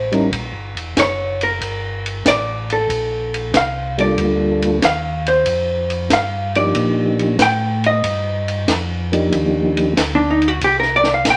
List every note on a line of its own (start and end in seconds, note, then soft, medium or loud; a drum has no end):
0.00 0.30 A1 medium
0.12 0.30 G3 medium
0.12 0.30 C#4 medium
0.12 0.31 D#4 medium
0.12 0.31 E4 medium
0.12 0.31 A#4 medium
0.12 ride soft
0.32 0.53 A#1 medium
0.32 kick soft
0.32 ride medium
0.54 0.75 G1 medium
0.75 0.95 E1 medium
0.75 ride soft
0.97 1.59 F#1 medium
0.97 1.41 C#5 medium
0.97 kick soft
0.97 snare medium
0.97 hi-hat pedal medium
0.97 ride medium
1.41 2.22 A#4 medium
1.41 ride medium
1.61 2.23 G1 medium
1.61 kick soft
1.61 ride medium
2.06 ride soft
2.25 2.87 A1 loud
2.25 2.70 D5 loud
2.25 kick soft
2.25 snare medium
2.25 hi-hat pedal medium
2.25 ride medium
2.70 3.51 A4 medium
2.70 ride soft
2.89 3.52 A#1 medium
2.89 kick soft
2.89 ride medium
3.34 ride soft
3.54 4.16 C2 loud
3.54 3.99 F5 loud
3.54 kick soft
3.54 snare medium
3.54 hi-hat pedal medium
3.54 ride medium
3.98 4.78 G3 medium
3.98 4.79 A#3 medium
3.98 4.79 D4 medium
3.98 4.79 F4 medium
3.98 4.79 A4 medium
3.98 4.80 D5 medium
3.98 ride medium
4.18 4.80 D2 medium
4.18 kick soft
4.18 ride medium
4.62 ride medium
4.82 5.45 D#2 medium
4.82 5.27 F5 loud
4.82 kick soft
4.82 snare medium
4.82 hi-hat pedal medium
4.82 ride medium
5.26 6.08 C5 medium
5.26 ride medium
5.46 6.09 F2 medium
5.46 kick soft
5.46 ride medium
5.90 ride soft
6.10 6.73 G2 medium
6.10 6.55 F5 medium
6.10 kick soft
6.10 snare medium
6.10 hi-hat pedal medium
6.10 ride medium
6.55 7.36 F3 medium
6.55 7.36 A#3 medium
6.55 7.36 D4 medium
6.55 7.37 D#4 medium
6.55 7.37 G4 medium
6.55 7.36 D5 medium
6.55 ride medium
6.75 7.38 A#2 medium
6.75 kick soft
6.75 ride medium
7.19 ride soft
7.39 8.02 A2 loud
7.39 7.84 G5 loud
7.39 kick soft
7.39 snare medium
7.39 hi-hat pedal medium
7.39 ride medium
7.84 8.66 D#5 loud
7.84 ride medium
8.04 8.67 G2 medium
8.04 kick soft
8.04 ride medium
8.48 ride soft
8.68 9.31 F2 medium
8.68 kick soft
8.68 snare medium
8.68 hi-hat pedal medium
8.68 ride medium
9.12 9.93 F3 medium
9.12 9.93 A#3 medium
9.12 9.93 D4 medium
9.12 9.93 D#4 medium
9.12 9.94 G4 medium
9.12 ride soft
9.32 9.95 D#2 medium
9.32 kick soft
9.32 ride medium
9.77 ride soft
9.97 10.60 D2 medium
9.97 kick soft
9.97 snare medium
9.97 hi-hat pedal medium
9.97 ride medium
10.15 10.39 D4 medium
10.31 10.48 D#4 medium
10.42 ride medium
10.48 10.60 F#4 medium
10.61 11.24 C2 medium
10.61 10.79 G4 loud
10.61 kick soft
10.61 ride medium
10.80 11.03 A#4 medium
10.80 snare soft
10.96 11.11 D5 loud
11.04 snare medium
11.04 ride soft
11.14 11.25 F5 medium
11.25 11.37 A#1 medium
11.25 kick soft
11.25 snare medium
11.25 hi-hat pedal medium
11.25 ride medium
11.30 11.37 G5 loud